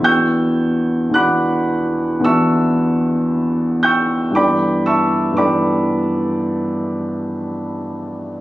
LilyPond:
<<
  \new Staff \with { instrumentName = "Grand piano" } { \time 4/4 \key e \major \tempo 4 = 57 <g'' cis''' e''' g'''>4 <fis'' b'' d''' fis'''>4 <e'' a'' cis''' e'''>4. <g'' cis''' e''' g'''>8 | <d'' g'' b'' d'''>8 <e'' a'' cis''' e'''>8 <d'' g'' b'' d'''>4 r2 | }
  \new Staff \with { instrumentName = "Grand piano" } { \time 4/4 \key e \major <e, e b d' fis'>4 <e, e b d' fis'>4 <e, e b d' fis'>2 | <g, e b d' a'>4 <g, e b d' a'>2. | }
>>